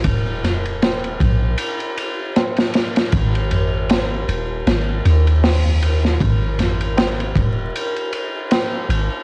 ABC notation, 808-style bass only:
X:1
M:4/4
L:1/8
Q:"Swing 16ths" 1/4=78
K:Abmix
V:1 name="808-style bass" clef=bass
E,,,3 B,,, z4 | A,,,3 E,,, A,,, E,,3 | A,,,3 E,,, z3 A,,, |]